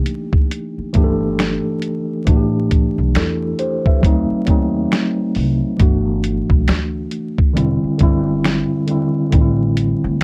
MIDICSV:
0, 0, Header, 1, 5, 480
1, 0, Start_track
1, 0, Key_signature, 1, "major"
1, 0, Tempo, 882353
1, 1234, Time_signature, 4, 2, 24, 8
1, 5568, End_track
2, 0, Start_track
2, 0, Title_t, "Tine electric piano"
2, 0, Program_c, 0, 4
2, 0, Control_c, 0, 64, 127
2, 0, Note_on_c, 0, 52, 77
2, 0, Note_on_c, 0, 57, 77
2, 0, Note_on_c, 0, 58, 49
2, 0, Note_on_c, 0, 62, 66
2, 0, Note_on_c, 0, 63, 56
2, 0, Note_on_c, 0, 67, 87
2, 505, Note_off_c, 0, 52, 0
2, 505, Note_on_c, 0, 52, 89
2, 512, Note_off_c, 0, 57, 0
2, 512, Note_on_c, 0, 57, 85
2, 522, Note_off_c, 0, 62, 0
2, 522, Note_on_c, 0, 62, 79
2, 530, Note_off_c, 0, 67, 0
2, 530, Note_on_c, 0, 67, 81
2, 565, Note_off_c, 0, 67, 0
2, 565, Note_on_c, 0, 69, 84
2, 980, Note_off_c, 0, 52, 0
2, 983, Note_off_c, 0, 57, 0
2, 988, Note_off_c, 0, 62, 0
2, 1010, Note_off_c, 0, 69, 0
2, 1224, Note_on_c, 0, 52, 78
2, 1233, Note_on_c, 0, 57, 67
2, 1240, Control_c, 0, 64, 0
2, 1242, Note_off_c, 0, 63, 0
2, 1242, Note_on_c, 0, 62, 76
2, 1244, Note_off_c, 0, 58, 0
2, 1248, Note_on_c, 0, 66, 67
2, 1284, Note_off_c, 0, 66, 0
2, 1285, Note_on_c, 0, 67, 82
2, 1347, Control_c, 0, 64, 127
2, 1724, Note_on_c, 0, 69, 74
2, 1726, Note_on_c, 0, 64, 62
2, 1740, Note_off_c, 0, 67, 0
2, 1873, Note_off_c, 0, 52, 0
2, 1878, Note_off_c, 0, 57, 0
2, 1882, Note_off_c, 0, 62, 0
2, 1947, Note_off_c, 0, 69, 0
2, 1949, Note_off_c, 0, 64, 0
2, 1954, Note_on_c, 0, 72, 69
2, 1956, Note_on_c, 0, 67, 54
2, 2093, Note_off_c, 0, 72, 0
2, 2094, Note_off_c, 0, 67, 0
2, 2103, Note_on_c, 0, 76, 63
2, 2107, Note_on_c, 0, 71, 50
2, 2183, Note_on_c, 0, 54, 93
2, 2191, Note_on_c, 0, 57, 77
2, 2199, Note_on_c, 0, 60, 81
2, 2202, Control_c, 0, 64, 0
2, 2208, Note_on_c, 0, 63, 96
2, 2306, Control_c, 0, 64, 127
2, 2330, Note_off_c, 0, 76, 0
2, 2332, Note_off_c, 0, 71, 0
2, 2391, Note_off_c, 0, 54, 0
2, 2395, Note_off_c, 0, 57, 0
2, 2399, Note_off_c, 0, 60, 0
2, 2404, Note_off_c, 0, 63, 0
2, 2425, Note_on_c, 0, 54, 90
2, 2434, Note_on_c, 0, 57, 80
2, 2442, Note_on_c, 0, 60, 81
2, 2450, Note_on_c, 0, 63, 88
2, 2900, Note_off_c, 0, 54, 0
2, 2904, Note_off_c, 0, 57, 0
2, 2908, Note_off_c, 0, 60, 0
2, 2912, Note_off_c, 0, 63, 0
2, 3140, Note_on_c, 0, 52, 78
2, 3149, Note_on_c, 0, 57, 71
2, 3156, Note_on_c, 0, 62, 66
2, 3162, Control_c, 0, 64, 0
2, 3166, Note_on_c, 0, 66, 77
2, 3244, Control_c, 0, 64, 127
2, 3791, Note_off_c, 0, 52, 0
2, 3796, Note_off_c, 0, 57, 0
2, 3799, Note_off_c, 0, 62, 0
2, 3804, Note_off_c, 0, 66, 0
2, 4098, Note_on_c, 0, 50, 87
2, 4106, Note_on_c, 0, 55, 84
2, 4114, Note_on_c, 0, 60, 91
2, 4121, Control_c, 0, 64, 0
2, 4123, Note_on_c, 0, 64, 92
2, 4214, Control_c, 0, 64, 127
2, 4309, Note_off_c, 0, 50, 0
2, 4313, Note_off_c, 0, 55, 0
2, 4316, Note_off_c, 0, 60, 0
2, 4321, Note_off_c, 0, 64, 0
2, 4341, Note_on_c, 0, 50, 77
2, 4350, Note_on_c, 0, 55, 75
2, 4358, Note_on_c, 0, 60, 74
2, 4367, Note_on_c, 0, 64, 102
2, 4675, Note_off_c, 0, 50, 0
2, 4679, Note_off_c, 0, 55, 0
2, 4683, Note_off_c, 0, 60, 0
2, 4688, Note_off_c, 0, 64, 0
2, 4823, Note_on_c, 0, 50, 78
2, 4832, Note_on_c, 0, 55, 65
2, 4839, Note_on_c, 0, 60, 67
2, 4848, Note_on_c, 0, 64, 80
2, 5003, Note_off_c, 0, 50, 0
2, 5007, Note_off_c, 0, 55, 0
2, 5011, Note_off_c, 0, 60, 0
2, 5015, Note_off_c, 0, 64, 0
2, 5059, Note_on_c, 0, 50, 77
2, 5069, Note_on_c, 0, 55, 64
2, 5075, Note_on_c, 0, 60, 71
2, 5080, Control_c, 0, 64, 0
2, 5084, Note_on_c, 0, 63, 68
2, 5120, Note_on_c, 0, 64, 91
2, 5122, Note_off_c, 0, 63, 0
2, 5179, Control_c, 0, 64, 127
2, 5315, Note_off_c, 0, 60, 0
2, 5337, Note_off_c, 0, 64, 0
2, 5568, Note_off_c, 0, 50, 0
2, 5568, Note_off_c, 0, 55, 0
2, 5568, End_track
3, 0, Start_track
3, 0, Title_t, "Upright bass"
3, 0, Program_c, 1, 32
3, 519, Note_on_c, 1, 31, 85
3, 838, Note_off_c, 1, 31, 0
3, 1237, Note_on_c, 1, 33, 99
3, 1557, Note_off_c, 1, 33, 0
3, 1622, Note_on_c, 1, 35, 85
3, 1700, Note_off_c, 1, 35, 0
3, 1715, Note_on_c, 1, 40, 91
3, 1914, Note_off_c, 1, 40, 0
3, 2192, Note_on_c, 1, 38, 104
3, 2315, Note_off_c, 1, 38, 0
3, 2438, Note_on_c, 1, 39, 85
3, 2636, Note_off_c, 1, 39, 0
3, 2917, Note_on_c, 1, 36, 91
3, 3037, Note_off_c, 1, 36, 0
3, 3156, Note_on_c, 1, 31, 104
3, 3476, Note_off_c, 1, 31, 0
3, 3536, Note_on_c, 1, 35, 86
3, 3616, Note_off_c, 1, 35, 0
3, 3636, Note_on_c, 1, 38, 81
3, 3835, Note_off_c, 1, 38, 0
3, 4115, Note_on_c, 1, 28, 99
3, 4236, Note_off_c, 1, 28, 0
3, 4356, Note_on_c, 1, 31, 86
3, 4676, Note_off_c, 1, 31, 0
3, 5075, Note_on_c, 1, 33, 108
3, 5396, Note_off_c, 1, 33, 0
3, 5463, Note_on_c, 1, 38, 92
3, 5540, Note_off_c, 1, 38, 0
3, 5568, End_track
4, 0, Start_track
4, 0, Title_t, "Muted upright bass strokes"
4, 425, Note_on_c, 9, 29, 45
4, 479, Note_off_c, 9, 29, 0
4, 2342, Note_on_c, 9, 29, 46
4, 2396, Note_off_c, 9, 29, 0
4, 4263, Note_on_c, 9, 29, 47
4, 4317, Note_off_c, 9, 29, 0
4, 5568, End_track
5, 0, Start_track
5, 0, Title_t, "Drums"
5, 32, Note_on_c, 9, 42, 61
5, 87, Note_off_c, 9, 42, 0
5, 178, Note_on_c, 9, 36, 95
5, 232, Note_off_c, 9, 36, 0
5, 279, Note_on_c, 9, 42, 78
5, 334, Note_off_c, 9, 42, 0
5, 511, Note_on_c, 9, 42, 67
5, 517, Note_on_c, 9, 36, 87
5, 565, Note_off_c, 9, 42, 0
5, 572, Note_off_c, 9, 36, 0
5, 756, Note_on_c, 9, 26, 95
5, 761, Note_on_c, 9, 38, 116
5, 762, Note_on_c, 9, 42, 77
5, 810, Note_off_c, 9, 26, 0
5, 815, Note_off_c, 9, 38, 0
5, 816, Note_off_c, 9, 42, 0
5, 990, Note_on_c, 9, 42, 58
5, 1045, Note_off_c, 9, 42, 0
5, 1234, Note_on_c, 9, 42, 74
5, 1235, Note_on_c, 9, 36, 109
5, 1288, Note_off_c, 9, 42, 0
5, 1289, Note_off_c, 9, 36, 0
5, 1475, Note_on_c, 9, 42, 78
5, 1477, Note_on_c, 9, 36, 84
5, 1530, Note_off_c, 9, 42, 0
5, 1531, Note_off_c, 9, 36, 0
5, 1714, Note_on_c, 9, 42, 84
5, 1716, Note_on_c, 9, 26, 76
5, 1721, Note_on_c, 9, 38, 98
5, 1768, Note_off_c, 9, 42, 0
5, 1770, Note_off_c, 9, 26, 0
5, 1775, Note_off_c, 9, 38, 0
5, 1951, Note_on_c, 9, 42, 62
5, 2006, Note_off_c, 9, 42, 0
5, 2098, Note_on_c, 9, 36, 92
5, 2152, Note_off_c, 9, 36, 0
5, 2192, Note_on_c, 9, 36, 84
5, 2200, Note_on_c, 9, 42, 77
5, 2247, Note_off_c, 9, 36, 0
5, 2254, Note_off_c, 9, 42, 0
5, 2430, Note_on_c, 9, 42, 66
5, 2437, Note_on_c, 9, 36, 90
5, 2485, Note_off_c, 9, 42, 0
5, 2491, Note_off_c, 9, 36, 0
5, 2676, Note_on_c, 9, 26, 89
5, 2681, Note_on_c, 9, 38, 105
5, 2682, Note_on_c, 9, 42, 73
5, 2730, Note_off_c, 9, 26, 0
5, 2735, Note_off_c, 9, 38, 0
5, 2736, Note_off_c, 9, 42, 0
5, 2910, Note_on_c, 9, 46, 39
5, 2964, Note_off_c, 9, 46, 0
5, 3152, Note_on_c, 9, 42, 77
5, 3154, Note_on_c, 9, 36, 120
5, 3207, Note_off_c, 9, 42, 0
5, 3208, Note_off_c, 9, 36, 0
5, 3394, Note_on_c, 9, 42, 69
5, 3448, Note_off_c, 9, 42, 0
5, 3535, Note_on_c, 9, 36, 87
5, 3589, Note_off_c, 9, 36, 0
5, 3633, Note_on_c, 9, 42, 83
5, 3635, Note_on_c, 9, 26, 74
5, 3639, Note_on_c, 9, 38, 96
5, 3687, Note_off_c, 9, 42, 0
5, 3689, Note_off_c, 9, 26, 0
5, 3694, Note_off_c, 9, 38, 0
5, 3869, Note_on_c, 9, 42, 61
5, 3924, Note_off_c, 9, 42, 0
5, 4017, Note_on_c, 9, 36, 88
5, 4071, Note_off_c, 9, 36, 0
5, 4117, Note_on_c, 9, 42, 81
5, 4171, Note_off_c, 9, 42, 0
5, 4348, Note_on_c, 9, 42, 59
5, 4356, Note_on_c, 9, 36, 85
5, 4402, Note_off_c, 9, 42, 0
5, 4410, Note_off_c, 9, 36, 0
5, 4594, Note_on_c, 9, 26, 87
5, 4599, Note_on_c, 9, 38, 120
5, 4600, Note_on_c, 9, 42, 76
5, 4649, Note_off_c, 9, 26, 0
5, 4653, Note_off_c, 9, 38, 0
5, 4655, Note_off_c, 9, 42, 0
5, 4829, Note_on_c, 9, 42, 57
5, 4883, Note_off_c, 9, 42, 0
5, 5072, Note_on_c, 9, 42, 70
5, 5074, Note_on_c, 9, 36, 114
5, 5126, Note_off_c, 9, 42, 0
5, 5128, Note_off_c, 9, 36, 0
5, 5315, Note_on_c, 9, 42, 76
5, 5369, Note_off_c, 9, 42, 0
5, 5568, End_track
0, 0, End_of_file